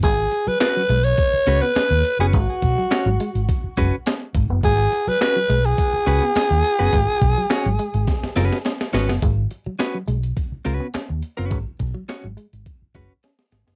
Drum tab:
HH |x-x-x-xxx-x-x-x-|x-x-x-xxx-x-x-x-|x-x-x-xxx-x-x-x-|x-x-xxxxx-x-x-o-|
CP |----x-------x---|----x-------x---|----x-------x---|----x-----------|
SD |----o-------o---|----o-------o---|----o-------o---|----o---oooooooo|
BD |o-------o-------|o-o-----o-o---o-|o-------o-------|o-o-----o-------|

HH |x-x-x-xxx-x-x-x-|x-x-x-xxx-x-x-x-|
CP |----x-------x---|----x-----------|
SD |----o-------o---|----o-------oooo|
BD |o-------o-------|o-o-----o-o-----|